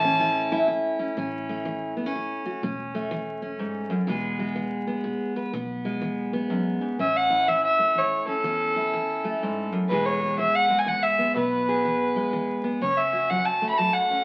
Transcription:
0.00 0.93 A1 loud
0.00 0.18 A2 medium
0.00 0.19 E3 medium
0.00 1.16 A3 medium
0.00 0.51 E4 medium
0.00 0.65 A5 loud
0.04 0.98 C#4 medium
0.21 0.65 E3 medium
0.52 2.45 E4 medium
0.68 1.13 E2 medium
0.99 1.15 C#4 medium
1.17 2.37 A1 medium
1.17 1.62 A2 medium
1.17 1.96 C#4 medium
1.49 2.61 A3 medium
1.65 2.10 E3 medium
1.97 2.06 B3 medium
2.06 2.62 C#4 soft
2.15 2.59 E2 medium
2.46 2.61 F#4 medium
2.63 3.83 E1 medium
2.63 3.08 A2 medium
2.63 3.41 C#4 medium
2.95 4.06 A3 medium
3.11 3.56 E3 medium
3.42 4.06 C#4 medium
3.59 3.89 G#2 medium
3.90 4.07 F#2 medium
4.07 5.28 E1 medium
4.07 4.52 E2 medium
4.07 4.55 E3 medium
4.07 4.39 G#3 medium
4.07 4.87 B3 medium
4.07 5.36 G#4 medium
4.39 5.51 G#3 medium
4.56 5.01 E3 medium
4.87 5.53 B3 medium
5.04 5.49 B2 medium
5.36 5.51 B4 medium
5.53 6.74 B1 medium
5.53 5.98 E2 medium
5.53 6.32 B3 medium
5.85 6.97 G#3 medium
6.01 6.47 E3 medium
6.33 6.99 B3 medium
6.50 6.81 F#2 medium
6.81 6.99 G#2 medium
6.99 8.20 A1 medium
6.99 7.44 A2 medium
6.99 8.26 C#4 medium
6.99 7.17 E5 medium
7.16 7.49 F#5 medium
7.30 8.76 E4 medium
7.48 7.93 E3 medium
7.48 7.63 E5 medium
7.64 7.99 E5 medium
7.79 8.43 A3 medium
7.95 8.41 E3 medium
7.95 8.27 C#5 medium
8.27 8.42 C#4 soft
8.27 9.69 A4 medium
8.44 9.65 E2 medium
8.44 8.89 A2 medium
8.44 9.88 C#4 medium
8.76 9.93 E4 medium
8.93 9.38 E3 medium
9.24 9.88 A3 soft
9.43 9.72 G#2 medium
9.72 9.90 F#2 medium
9.89 11.11 E1 medium
9.89 10.35 E2 medium
9.89 10.39 E3 medium
9.89 10.70 G#3 medium
9.89 11.18 B3 medium
9.89 10.21 G#4 medium
9.89 10.07 B4 medium
10.06 10.38 C#5 medium
10.21 11.34 G#4 medium
10.39 10.84 E3 medium
10.39 10.57 E5 medium
10.55 10.80 F#5 medium
10.70 11.34 G#3 medium
10.78 10.90 G#5 medium
10.86 11.32 E3 medium
10.86 11.04 F#5 medium
11.03 11.36 E5 medium
11.19 11.35 B3 soft
11.36 12.57 B1 medium
11.36 11.81 E2 medium
11.36 12.63 B3 medium
11.36 12.61 B4 medium
11.68 12.81 G#4 medium
11.85 12.30 E3 medium
12.16 12.80 G#3 medium
12.33 12.78 E3 medium
12.64 12.82 B3 soft
12.81 14.03 F#1 medium
12.81 13.27 F#2 medium
12.81 14.10 C#4 medium
12.81 12.99 C#5 medium
12.97 13.31 E5 medium
13.13 14.24 F#4 medium
13.30 13.76 F#3 medium
13.30 13.46 F#5 medium
13.45 13.69 A5 medium
13.62 14.24 A3 medium
13.69 13.79 B5 medium
13.78 14.24 F#3 medium
13.78 13.94 A5 medium
13.93 14.24 F#5 medium
14.11 14.24 C#4 medium

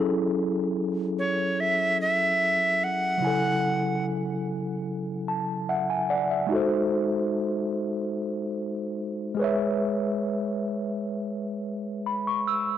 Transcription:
0.00 3.16 F#3 medium
0.00 3.17 C#4 medium
0.00 3.18 E4 medium
0.00 3.20 G#4 medium
0.00 3.21 A4 medium
1.19 1.62 C#5 medium
1.60 2.00 E5 medium
2.01 2.85 E5 loud
2.84 4.06 F#5 loud
3.18 6.46 C#3 medium
3.18 6.45 F#3 medium
3.22 6.47 E4 medium
3.22 5.89 G#5 medium
3.27 6.49 A4 medium
5.28 5.66 A5 medium
5.69 5.89 E5 medium
5.69 6.07 F#5 medium
5.90 6.09 G#5 medium
6.10 6.48 D5 medium
6.10 6.29 F#5 medium
6.31 6.70 E5 medium
6.47 9.33 G#3 medium
6.47 9.34 D#4 medium
6.51 9.35 F#4 medium
6.51 9.36 A4 medium
6.56 9.37 C5 medium
9.35 12.61 G#3 medium
9.35 12.63 G#4 medium
9.39 12.64 B4 medium
9.39 12.65 C#5 medium
9.44 12.66 E5 medium
12.06 12.26 B5 medium
12.27 12.46 C#6 medium
12.47 12.78 E6 medium

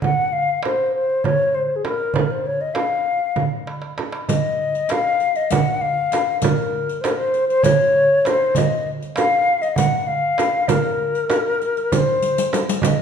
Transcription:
0.02 0.34 F#5 medium
0.02 darbuka dum medium
0.02 frame drum medium
0.33 0.63 F5 medium
0.49 darbuka ka soft
0.63 0.93 C5 medium
0.63 darbuka tek medium
0.63 frame drum medium
0.95 1.26 C5 medium
1.10 darbuka ka soft
1.24 1.56 C#5 medium
1.24 darbuka dum medium
1.24 frame drum medium
1.54 1.77 C5 medium
1.54 darbuka ka soft
1.76 1.86 G#4 medium
1.85 2.16 A#4 medium
1.85 darbuka tek medium
1.85 frame drum medium
2.00 darbuka ka soft
2.14 2.23 C5 medium
2.14 darbuka dum medium
2.14 frame drum medium
2.21 2.33 A#4 medium
2.31 2.48 C5 medium
2.46 2.63 C#5 medium
2.61 2.76 D#5 medium
2.61 darbuka ka soft
2.74 3.44 F5 medium
2.74 darbuka tek medium
2.74 frame drum medium
3.06 darbuka ka soft
3.20 darbuka ka soft
3.36 frame drum medium
3.36 darbuka dum medium
3.67 darbuka tek medium
3.82 darbuka ka medium
3.98 darbuka tek medium
3.98 frame drum medium
4.12 darbuka ka medium
4.28 4.93 D#5 medium
4.28 riq medium
4.28 darbuka dum medium
4.28 frame drum medium
4.75 riq soft
4.75 darbuka ka soft
4.89 5.38 F5 loud
4.89 riq soft
4.89 darbuka tek medium
4.89 frame drum medium
5.20 riq soft
5.20 darbuka ka soft
5.35 5.53 D#5 medium
5.35 riq soft
5.50 5.83 F#5 medium
5.50 riq medium
5.50 darbuka dum medium
5.50 frame drum medium
5.81 6.41 F5 medium
5.81 darbuka ka soft
6.12 riq soft
6.12 darbuka tek medium
6.12 frame drum medium
6.28 darbuka ka soft
6.42 7.03 A#4 medium
6.42 riq medium
6.42 darbuka dum medium
6.42 frame drum medium
6.89 riq soft
6.89 darbuka ka soft
7.01 7.12 C5 medium
7.01 riq soft
7.01 darbuka tek medium
7.01 frame drum medium
7.10 7.19 A#4 medium
7.17 7.48 C5 medium
7.34 riq soft
7.34 darbuka ka soft
7.48 7.64 C5 loud
7.48 riq soft
7.63 8.27 C#5 loud
7.63 riq medium
7.63 darbuka dum medium
7.63 frame drum medium
7.95 darbuka ka soft
8.25 8.59 C5 medium
8.25 riq soft
8.25 darbuka tek medium
8.25 frame drum medium
8.40 darbuka ka soft
8.55 8.90 D#5 medium
8.55 riq medium
8.55 darbuka dum medium
8.55 frame drum medium
9.01 riq soft
9.01 darbuka ka soft
9.16 9.63 F5 loud
9.16 riq soft
9.16 darbuka tek medium
9.16 frame drum medium
9.46 darbuka ka soft
9.62 9.77 D#5 medium
9.62 riq soft
9.76 9.99 F#5 loud
9.76 riq medium
9.76 darbuka dum medium
9.76 frame drum medium
9.99 10.09 F#5 medium
10.07 10.70 F5 medium
10.07 darbuka ka soft
10.38 riq soft
10.38 darbuka tek medium
10.38 frame drum medium
10.53 darbuka ka soft
10.68 11.94 A#4 medium
10.68 riq medium
10.68 darbuka dum medium
10.68 frame drum medium
11.15 riq soft
11.30 riq soft
11.30 darbuka tek medium
11.30 frame drum medium
11.61 riq soft
11.61 darbuka ka soft
11.77 riq soft
11.77 darbuka ka soft
11.92 12.60 C5 medium
11.92 riq medium
11.92 darbuka dum medium
11.92 frame drum medium
12.22 riq soft
12.22 darbuka ka soft
12.38 riq medium
12.53 riq medium
12.53 darbuka tek medium
12.53 frame drum medium
12.68 riq medium
12.68 darbuka ka soft
12.82 13.02 D#5 medium
12.82 riq medium
12.82 darbuka dum medium
12.82 frame drum medium

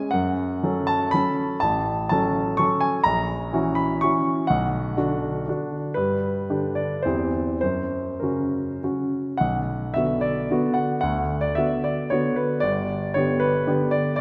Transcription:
0.00 0.12 G#5 medium
0.11 0.63 F#2 medium
0.11 0.89 F#5 medium
0.63 1.10 F#3 medium
0.63 1.10 C#4 medium
0.63 1.10 A4 medium
0.87 1.13 A5 medium
1.11 1.57 F#3 soft
1.11 1.58 C#4 soft
1.11 1.58 A4 soft
1.11 1.60 B5 medium
1.60 2.09 A1 medium
1.60 2.08 A5 medium
2.09 2.55 F#3 medium
2.09 2.56 C#4 soft
2.09 2.56 A4 medium
2.09 2.58 A5 medium
2.57 2.99 F#3 soft
2.57 3.00 C#4 soft
2.57 3.00 A4 medium
2.57 2.80 C#6 medium
2.81 3.03 G#5 medium
3.04 3.50 A#1 medium
3.04 3.77 A#5 medium
3.53 3.98 E3 medium
3.53 3.99 C#4 soft
3.53 3.99 F#4 soft
3.75 4.01 B5 medium
4.01 4.44 E3 soft
4.01 4.45 C#4 soft
4.01 4.45 F#4 soft
4.01 4.47 C#6 medium
4.47 4.96 B1 medium
4.47 5.72 F#5 medium
4.97 5.44 D3 soft
4.97 5.44 D4 medium
4.97 5.44 F#4 medium
5.48 5.92 D3 soft
5.48 5.92 D4 soft
5.48 5.93 F#4 soft
5.94 6.47 G2 medium
5.94 6.76 B4 medium
6.50 7.01 D3 soft
6.50 7.01 D4 soft
6.50 7.01 G4 soft
6.75 7.04 D5 medium
7.03 7.60 E2 soft
7.03 7.57 E3 soft
7.03 7.57 C4 soft
7.03 7.58 G4 soft
7.03 7.59 C5 medium
7.61 8.21 F#2 soft
7.61 8.21 C5 medium
8.20 8.78 C#3 soft
8.20 8.79 C#4 soft
8.20 8.79 F#4 soft
8.20 8.81 A#4 soft
8.83 9.37 C#3 soft
8.83 9.37 C#4 soft
8.83 9.37 F#4 soft
9.37 9.94 B1 medium
9.37 9.94 F#5 medium
9.94 10.47 D3 soft
9.94 10.47 B3 soft
9.94 10.48 F#4 soft
9.94 10.23 E5 medium
10.21 10.75 D5 medium
10.51 10.98 D3 soft
10.51 10.98 B3 soft
10.51 10.98 F#4 medium
10.74 10.99 F#5 medium
11.01 11.54 D2 medium
11.01 11.41 F#5 medium
11.41 11.55 D5 medium
11.55 12.07 D3 soft
11.55 12.07 B3 soft
11.55 12.08 F#4 soft
11.55 11.83 E5 medium
11.84 12.11 D5 medium
12.10 12.59 D3 medium
12.10 12.59 B3 medium
12.10 12.60 F#4 medium
12.10 12.36 C#5 medium
12.36 12.62 B4 medium
12.60 13.14 G1 medium
12.60 13.15 D5 medium
13.14 13.64 D3 soft
13.14 13.65 B3 soft
13.14 13.65 G4 soft
13.14 13.42 C#5 medium
13.40 13.92 B4 medium
13.67 14.13 D3 medium
13.67 14.13 B3 soft
13.67 14.13 G4 medium
13.91 14.15 D5 medium
14.16 14.21 D5 medium

